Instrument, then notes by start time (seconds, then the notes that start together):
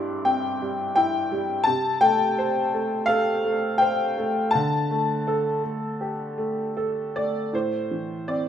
upright piano
Already playing: G2 G3 E4 G5 C6 D6
0.25 C4 G5
0.62 G3
0.96 E4 G5
1.32 G3
1.64 C3 A5
2.01 A3 G5
2.38 C5
2.74 A3
3.06 A4 F5
3.45 A3
3.78 C5 G5
4.18 A3
4.51 A5
4.55 D3
4.91 A3
5.27 A4
5.63 A3
6.01 G4
6.38 A3
6.77 A4
7.16 A3 D5
7.53 A2 C5
7.91 E3
8.28 C4 D5